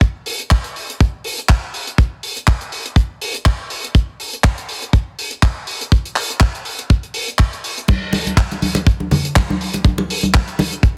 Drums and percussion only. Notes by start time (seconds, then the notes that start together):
0.01 kick, closed hi-hat
0.26 open hi-hat
0.40 closed hi-hat
0.51 kick, clap, closed hi-hat
0.64 closed hi-hat
0.76 open hi-hat
0.90 closed hi-hat
1.00 kick, closed hi-hat
1.24 open hi-hat
1.38 closed hi-hat
1.49 kick, clap, closed hi-hat
1.74 open hi-hat
1.87 closed hi-hat
1.98 kick, closed hi-hat
2.23 open hi-hat
2.37 closed hi-hat
2.47 kick, clap, closed hi-hat
2.61 closed hi-hat
2.72 open hi-hat
2.86 closed hi-hat
2.96 kick, closed hi-hat
3.21 open hi-hat
3.34 closed hi-hat
3.45 kick, clap, closed hi-hat
3.70 open hi-hat
3.84 closed hi-hat
3.95 kick, closed hi-hat
4.20 open hi-hat
4.33 closed hi-hat
4.44 kick, clap, closed hi-hat
4.58 closed hi-hat
4.69 open hi-hat
4.82 closed hi-hat
4.93 kick, closed hi-hat
5.19 open hi-hat
5.31 closed hi-hat
5.43 kick, clap, closed hi-hat
5.67 open hi-hat
5.81 closed hi-hat
5.92 kick, closed hi-hat
6.05 closed hi-hat
6.16 clap, open hi-hat
6.30 closed hi-hat
6.40 kick, clap, closed hi-hat
6.55 closed hi-hat
6.65 open hi-hat
6.79 closed hi-hat
6.90 kick, closed hi-hat
7.03 closed hi-hat
7.14 open hi-hat
7.28 closed hi-hat
7.39 kick, clap, closed hi-hat
7.53 closed hi-hat
7.64 open hi-hat
7.78 closed hi-hat
7.88 kick, closed hi-hat, crash, muted conga, high conga
8.13 open hi-hat, muted conga
8.27 closed hi-hat, high conga
8.37 kick, clap, closed hi-hat
8.51 closed hi-hat, muted conga
8.62 open hi-hat, high conga
8.75 closed hi-hat, muted conga
8.87 kick, closed hi-hat
9.00 high conga
9.11 open hi-hat, muted conga, low conga
9.25 closed hi-hat
9.36 kick, clap, closed hi-hat, muted conga
9.50 high conga
9.61 open hi-hat
9.73 closed hi-hat, muted conga
9.85 kick, closed hi-hat, high conga
9.98 muted conga
10.10 open hi-hat
10.23 closed hi-hat, high conga
10.34 kick, clap, muted conga
10.48 closed hi-hat
10.59 open hi-hat, muted conga, high conga
10.73 closed hi-hat
10.83 kick, closed hi-hat